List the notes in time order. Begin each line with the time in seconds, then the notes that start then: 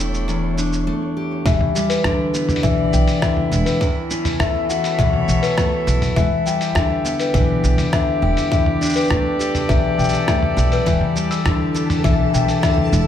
Already playing: E1 E2 A3 D4 G4 C#5 C#6
0.00 E4, shaker
0.08 D4
0.14 shaker
0.28 E2, shaker
0.57 D4, shaker
0.73 shaker
0.87 A3
1.17 G4
1.45 E1 E3 E5, kick, open hi-hat, shaker
1.61 mid tom
1.74 G3 E4, shaker
1.89 B4, open hi-hat, shaker
2.04 E2 D3, kick, cross-stick, shaker
2.34 B3, shaker
2.49 D5, mid tom, shaker
2.56 open hi-hat
2.63 B1 E3 E5, kick, open hi-hat, shaker
2.93 B1 G5, shaker
3.08 open hi-hat, shaker
3.22 D3 E5, kick, cross-stick, open hi-hat, shaker
3.37 mid tom
3.51 E1 E4, shaker
3.66 B4, open hi-hat, shaker
3.81 E2, kick, open hi-hat, shaker
4.11 C#4 A4, shaker
4.25 mid tom, open hi-hat, shaker
4.40 E2 A3 E5, kick, cross-stick, open hi-hat, shaker
4.69 F#4 F#5, shaker
4.84 C#5, open hi-hat, shaker
4.99 B1 E2 E5, kick, open hi-hat, shaker
5.13 mid tom
5.28 B1, shaker
5.42 B4, open hi-hat, shaker
5.58 A3, kick, cross-stick, open hi-hat, shaker
5.87 B1 E4, shaker
6.02 mid tom, open hi-hat, shaker
6.16 E1 E3 E5, kick, open hi-hat, shaker
6.46 G3 G5, shaker
6.59 G4, open hi-hat, shaker
6.75 E2 D3 E5, kick, cross-stick, open hi-hat, shaker
7.05 B3, shaker
7.19 B4 D5, open hi-hat, shaker
7.34 B1 E3, kick, open hi-hat, shaker
7.64 B1, shaker
7.78 mid tom, open hi-hat, shaker
7.93 D3 E5, kick, cross-stick, open hi-hat, shaker
8.22 E1 E4 G5
8.37 open hi-hat, shaker
8.52 E2 E5, kick, open hi-hat, shaker
8.66 mid tom
8.81 D4, shaker
8.85 shaker
8.89 shaker
8.93 B4, open hi-hat, shaker
8.96 shaker
9.00 shaker
9.04 shaker
9.07 E2 A3, kick, cross-stick, shaker
9.11 A4, shaker
9.39 G4, shaker
9.55 mid tom, open hi-hat, shaker
9.69 B1 E2 E5, kick, open hi-hat, shaker
9.98 B1 G5, shaker
10.04 shaker
10.09 shaker
10.13 open hi-hat, shaker
10.28 A3 E5, kick, cross-stick, open hi-hat, shaker
10.43 mid tom
10.57 B1 E4, shaker
10.72 B4, open hi-hat, shaker
10.86 E1 E3 A4 E5 A5, kick, open hi-hat, shaker
11.01 mid tom
11.15 G3, shaker
11.20 E4
11.31 E6, open hi-hat, shaker
11.46 E2 D3, kick, cross-stick, open hi-hat, shaker
11.74 B3, shaker
11.90 mid tom, open hi-hat, shaker
12.04 B1 E3 E5, kick, open hi-hat, shaker
12.34 B1 G5, shaker
12.48 open hi-hat, shaker
12.63 D3 E5, kick, cross-stick, open hi-hat, shaker
12.78 mid tom
12.92 E1 E4, shaker